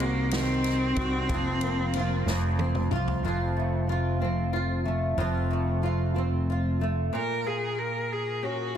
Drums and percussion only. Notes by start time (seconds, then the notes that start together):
0.00 ride
0.31 snare, ride
0.64 snare, ride
0.96 kick, ride
1.29 kick, ride
1.61 ride
1.93 ride
2.27 snare
2.59 high tom
2.75 mid tom
2.91 mid tom
3.08 floor tom